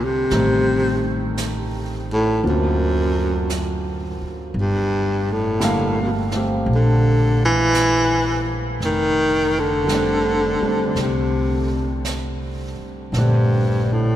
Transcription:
Already playing: C2 E3 G3 A3 C4 E4
0.05 C3
0.30 A1 D#3 G3 A3 C4 D#4, brush sweep, snare
1.37 brush sweep, snare, hi-hat pedal
2.13 A2
2.44 D2 D3 F#3 A#3 C4 F4, brush sweep
2.49 F#2
3.50 brush sweep, snare, hi-hat pedal
4.22 muted upright bass stroke
4.54 G1, brush sweep
4.60 G2
5.32 A2
5.60 D3 G3 A3 A#3, brush sweep, snare, hi-hat pedal
5.64 F5
6.02 C3
6.07 B2
6.31 A3 C4, snare
6.36 G4
6.66 A#1, brush sweep
6.75 D3
7.45 E3
7.74 brush sweep, snare, hi-hat pedal
8.80 F1, brush sweep, snare
8.85 D#3
9.59 D3
9.84 D3 G3
9.89 A3 C4, brush sweep, snare, hi-hat pedal
9.94 D4
10.61 G3 A3 C4, muted upright bass stroke
10.95 C2, brush sweep, snare
11.01 C3
12.05 brush sweep, snare, hi-hat pedal
12.79 muted upright bass stroke
13.12 A#1 D3 A3, brush sweep, snare
13.16 G2 C4 D4
13.93 A2

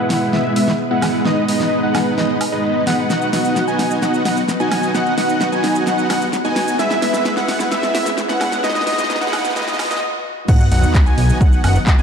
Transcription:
Already playing: B2 G#3 B3 E4 B4
0.00 G#3 B3 E4 B4 F#5
0.10 snare, open hi-hat
0.33 G#3 B3 E4 B4 E5, snare
0.56 G#3 B3 E4 B4 E5, open hi-hat
0.68 snare
0.91 G#3 B3 E4 B4 F#5
1.02 snare, open hi-hat, high woodblock
1.25 G#3 B3 D#4 B4 D#5, snare
1.48 G#3 B3 D#4 B4 D#5, open hi-hat
1.60 snare
1.83 G#3 B3 D#4 B4 F#5
1.95 snare, open hi-hat, high woodblock
2.18 G#3 B3 D#4 B4 D#5, snare
2.41 open hi-hat, high woodblock
2.52 G#3 B3 D#4 B4 D#5
2.87 G#3 B3 D#4 B4 F#5, snare, open hi-hat
3.10 F#3 B3 D#4 F#4 D#5 F#5, snare, riser, shaker
3.22 shaker
3.33 B3 D#4 F#4 D#5 F#5, snare, open hi-hat
3.45 shaker
3.56 snare, shaker
3.68 B3 D#4 F#4 D#5 G#5, shaker
3.79 snare, open hi-hat
3.91 shaker
4.02 B3 D#4 F#4 D#5 F#5, snare, shaker
4.14 shaker
4.25 B3 D#4 F#4 D#5 F#5, snare, open hi-hat
4.37 shaker
4.48 snare, shaker
4.60 B3 D#4 F#4 D#5 G#5, shaker
4.72 snare, open hi-hat, high woodblock
4.83 shaker
4.95 B3 D#4 F#4 D#5 F#5, snare, shaker
5.06 shaker
5.18 B3 D#4 F#4 D#5 F#5, snare, open hi-hat
5.29 shaker
5.41 snare, shaker
5.52 B3 D#4 F#4 D#5 G#5, shaker
5.64 snare, open hi-hat
5.75 shaker
5.87 B3 D#4 F#4 D#5 F#5, snare, shaker
5.99 shaker
6.10 B3 D#4 F#4 D#5 F#5, snare, open hi-hat, high woodblock
6.22 shaker
6.33 snare, shaker
6.45 B3 D#4 F#4 D#5 G#5, shaker
6.56 snare, open hi-hat
6.68 shaker
6.79 B2 G#3 B3 E4 B4 E5, snare, shaker
6.91 snare, shaker
7.02 G#3 B3 E4 B4 E5, snare, open hi-hat
7.14 snare, shaker
7.25 snare, shaker
7.37 G#3 B3 E4 B4 F#5, snare, shaker
7.48 snare, open hi-hat
7.60 snare, shaker
7.71 G#3 B3 E4 B4 E5, snare, shaker
7.83 snare, shaker
7.95 G#3 B3 E4 B4 E5, snare, open hi-hat
8.06 snare, shaker
8.18 snare, shaker
8.29 G#3 B3 E4 B4 F#5, snare, shaker
8.41 snare, open hi-hat, high woodblock
8.52 snare, shaker
8.64 B2 G#3 B3 D#4 B4 D#5, snare, shaker
8.70 snare
8.75 snare, shaker
8.81 snare
8.87 G#3 B3 D#4 B4 D#5, snare, open hi-hat
8.93 snare
8.98 snare, shaker
9.04 snare
9.10 snare, shaker
9.16 snare
9.21 G#3 B3 D#4 B4 F#5, snare, shaker
9.27 snare
9.33 snare, open hi-hat, high woodblock
9.39 snare
9.45 snare, shaker
9.50 snare
9.56 G#3 B3 D#4 B4 D#5, snare, shaker
9.62 snare
9.68 snare, shaker
9.73 snare
9.79 snare, open hi-hat, high woodblock
9.85 snare
9.91 G#3 B3 D#4 B4 D#5, snare, shaker
9.97 snare
10.48 D#3 F#3 B3 D#4 F#4 D#5 F#5, kick, crash, sub drop, shaker
10.60 shaker
10.72 B1 B3 D#4 F#4 D#5 F#5, open hi-hat
10.83 shaker
10.94 kick, clap, shaker
11.06 B3 D#4 F#4 D#5 G#5, shaker
11.18 B1, open hi-hat
11.29 shaker
11.41 B3 D#4 F#4 D#5 F#5, kick, shaker
11.52 shaker
11.64 F#1 B3 D#4 F#4 D#5 F#5, open hi-hat, high woodblock
11.75 shaker
11.87 kick, clap, shaker
11.98 B3 D#4 F#4 D#5 G#5, shaker

